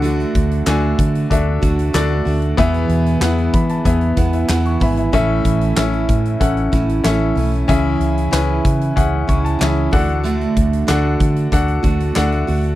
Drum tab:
HH |xxxxx-xxx-xxx-ox|xxxxxxxxxxxxxxox|x-xxxxxxxxxxx-ox|x-xxx-xxx-xxx-ox|
CP |----x-------x---|----x-------x---|----x-------x---|----x-------x---|
SD |----o-------o---|----o-----o-o---|----o-----o-o---|----o-------o---|
BD |--o---o-o-o-----|o-----o-o-o---o-|o-o---o-o-o-----|o-----o-o-o---o-|

HH |xxxxx-xxxxxxxxox|
CP |----x-------x---|
SD |----o-------o---|
BD |--o---o-o-o-----|